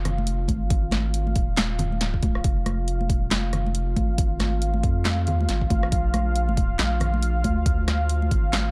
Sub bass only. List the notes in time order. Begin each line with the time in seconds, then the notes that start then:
Already playing: F1
0.49 G#1
1.36 D#1
2.44 F1
3.04 E1
3.31 F1
3.96 G#1
4.83 F2
5.28 E2
5.49 G#1
5.92 A#1
6.79 A#1
7.44 D2
8.31 G#1